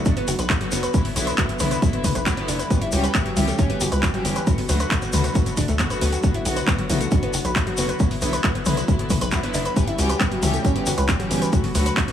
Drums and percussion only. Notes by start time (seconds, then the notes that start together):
0.05 kick, closed hi-hat, shaker
0.17 closed hi-hat
0.28 open hi-hat, shaker
0.39 closed hi-hat, shaker
0.50 kick, clap, closed hi-hat, shaker
0.61 closed hi-hat
0.72 open hi-hat, shaker
0.83 closed hi-hat, shaker
0.94 kick, closed hi-hat, shaker
1.05 open hi-hat
1.16 open hi-hat, shaker
1.27 closed hi-hat, shaker
1.38 kick, clap, closed hi-hat, shaker
1.49 closed hi-hat
1.59 open hi-hat, mid tom, shaker
1.71 closed hi-hat, shaker
1.82 kick, closed hi-hat, shaker
1.93 closed hi-hat
2.04 kick, open hi-hat, mid tom, shaker
2.15 closed hi-hat, shaker
2.26 kick, clap, closed hi-hat, shaker
2.37 closed hi-hat
2.48 open hi-hat, shaker
2.59 closed hi-hat, shaker
2.70 kick, closed hi-hat, shaker
2.82 closed hi-hat
2.92 open hi-hat, shaker
3.04 closed hi-hat, shaker
3.14 kick, clap, closed hi-hat, shaker
3.26 closed hi-hat
3.37 open hi-hat, mid tom, shaker
3.48 closed hi-hat, shaker
3.58 kick, closed hi-hat, shaker
3.70 closed hi-hat
3.81 open hi-hat, shaker
3.92 closed hi-hat, shaker
4.03 kick, clap, closed hi-hat, shaker
4.14 closed hi-hat
4.25 open hi-hat, shaker
4.36 closed hi-hat, shaker
4.47 kick, closed hi-hat, shaker
4.58 open hi-hat
4.69 open hi-hat, shaker
4.79 closed hi-hat, shaker
4.91 kick, clap, closed hi-hat, shaker
5.02 closed hi-hat, shaker
5.13 open hi-hat, mid tom, shaker
5.24 closed hi-hat, shaker
5.35 kick, closed hi-hat, shaker
5.46 closed hi-hat, shaker
5.57 kick, open hi-hat, mid tom, shaker
5.68 closed hi-hat, shaker
5.79 kick, clap, closed hi-hat, shaker
5.90 closed hi-hat, shaker
6.01 open hi-hat, shaker
6.12 closed hi-hat, shaker
6.23 kick, closed hi-hat, shaker
6.34 closed hi-hat
6.45 open hi-hat, shaker
6.56 closed hi-hat, shaker
6.67 kick, clap, closed hi-hat, shaker
6.79 closed hi-hat
6.90 open hi-hat, mid tom, shaker
7.01 closed hi-hat, shaker
7.11 kick, closed hi-hat, shaker
7.23 closed hi-hat
7.34 open hi-hat, shaker
7.45 closed hi-hat, shaker
7.56 kick, clap, closed hi-hat, shaker
7.67 closed hi-hat
7.77 open hi-hat, shaker
7.88 closed hi-hat, shaker
7.99 kick, closed hi-hat, shaker
8.11 open hi-hat
8.21 open hi-hat, shaker
8.33 closed hi-hat, shaker
8.44 kick, clap, closed hi-hat, shaker
8.55 closed hi-hat
8.65 open hi-hat, mid tom, shaker
8.77 closed hi-hat, shaker
8.88 kick, closed hi-hat, shaker
8.99 closed hi-hat
9.10 kick, open hi-hat, mid tom, shaker
9.21 closed hi-hat, shaker
9.32 kick, clap, closed hi-hat, shaker
9.43 closed hi-hat
9.54 open hi-hat, shaker
9.65 closed hi-hat, shaker
9.76 kick, closed hi-hat, shaker
9.88 closed hi-hat
9.99 open hi-hat, shaker
10.09 closed hi-hat, shaker
10.20 kick, clap, closed hi-hat, shaker
10.32 closed hi-hat
10.43 open hi-hat, mid tom, shaker
10.54 closed hi-hat, shaker
10.65 kick, closed hi-hat, shaker
10.76 closed hi-hat
10.86 open hi-hat, shaker
10.98 closed hi-hat, shaker
11.09 kick, clap, closed hi-hat, shaker
11.20 closed hi-hat
11.31 open hi-hat, shaker
11.42 closed hi-hat, shaker
11.53 kick, closed hi-hat, shaker
11.64 open hi-hat
11.75 open hi-hat, shaker
11.86 closed hi-hat, shaker
11.97 kick, clap, closed hi-hat, shaker
12.08 closed hi-hat